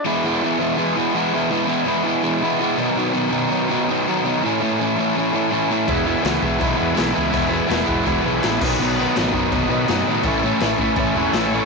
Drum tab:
CC |--------|--------|--------|--------|
SD |--------|--------|--------|--------|
BD |--------|--------|--------|--------|

CC |x-x-x-x-|x-x-x-xx|x-x-x-x-|x-x-x-x-|
SD |--o---o-|--o---o-|--o---o-|--o---o-|
BD |o--oo---|o--oo--o|---oo---|o--oo---|